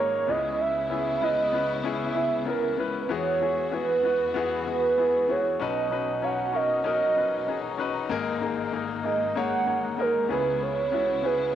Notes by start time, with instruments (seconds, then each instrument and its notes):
Already playing: grand piano G#1 G#2 A#3 D#4 G#4 A#4 C#5, string section G#2 G#3 A#3 D#4, soft synth lead C#5
0.27 grand piano C#2 C#3 B3 C#4 E4 G#4, string section C#3 B3 E4, soft synth lead D#5
0.60 soft synth lead E5
0.90 grand piano B3 C#4 E4 G#4
1.21 grand piano B3 C#4 E4 B4, soft synth lead D#5
1.52 grand piano B3 C#4 E4 B4
1.83 grand piano B3 C#4 E4 G#4, soft synth lead E5
2.15 grand piano B3 C#4 E4 G#4
2.45 grand piano B3 C#4 E4 A#4, soft synth lead A#4
2.77 grand piano B3 C#4 E4 B4, soft synth lead B4
3.09 string section E2 E3 F#4, grand piano E2 E3 B3 E4 F#4 G#4, soft synth lead C#5
3.40 grand piano B3 E4 F#4 G#4
3.71 grand piano B3 E4 F#4 G#4, soft synth lead B4
4.03 grand piano B3 E4 F#4 B4
4.34 grand piano B3 E4 F#4 G#4, soft synth lead B4
4.66 grand piano B3 E4 F#4 G#4
4.97 grand piano B3 E4 F#4 G#4
5.28 grand piano B3 E4 F#4 G#4, soft synth lead C#5
5.59 grand piano B1 B2 C#4 D#4 F#4 B4, string section B2 F#3 C#4 D#4, soft synth lead D#5
5.90 grand piano C#4 D#4 F#4 B4
6.22 grand piano C#4 D#4 F#4 C#5, soft synth lead F#5
6.53 grand piano C#4 D#4 F#4 A#4, soft synth lead D#5
6.84 grand piano C#4 D#4 F#4 A#4, soft synth lead D#5
7.16 grand piano C#4 D#4 F#4 B4
7.47 grand piano C#4 D#4 F#4 G#4
7.78 grand piano C#4 D#4 F#4 B4
8.09 grand piano G#1 G#2 A#3 D#4 G#4 A#4, string section G#2 G#3 A#3
8.41 grand piano A#3 D#4 G#4 A#4
8.72 grand piano A#3 D#4 G#4 A#4
9.04 grand piano A#3 D#4 G#4 A#4, soft synth lead D#5
9.35 grand piano A#3 D#4 G#4 C#5, soft synth lead F#5
9.66 grand piano A#3 D#4 G#4 C#5
9.97 grand piano A#3 D#4 G#4 A#4, soft synth lead A#4
10.29 grand piano C#2 C#3 B3 C#4 E4 G#4, string section C#3 B3 E4, soft synth lead B4
10.63 soft synth lead C#5
10.92 grand piano B3 C#4 E4 F#4
11.23 grand piano B3 C#4 E4 G#4, soft synth lead B4